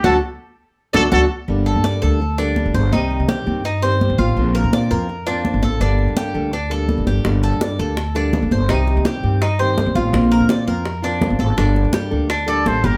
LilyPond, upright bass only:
\new Staff \with { instrumentName = "Upright bass" } { \clef bass \time 4/4 \key g \minor \tempo 4 = 166 d,8 r2 d,8 d,8 r8 | g,,8. g,8. d,4.~ d,16 f,,16 g,,8 | c,8. c8. g,4.~ g,16 a,,16 a,,8 | bes,,8. bes,8. f,4.~ f,16 g,,16 a,,8 |
g,,8. g,8. d,4.~ d,16 f,,16 g,,8 | g,,8. g,8. d,4.~ d,16 f,,16 g,,8 | c,8. c8. g,4.~ g,16 a,,16 a,,8 | bes,,8. bes,8. f,4.~ f,16 g,,16 aes,,8 |
g,,8. g,8. d,4. a,,8 g,,8 | }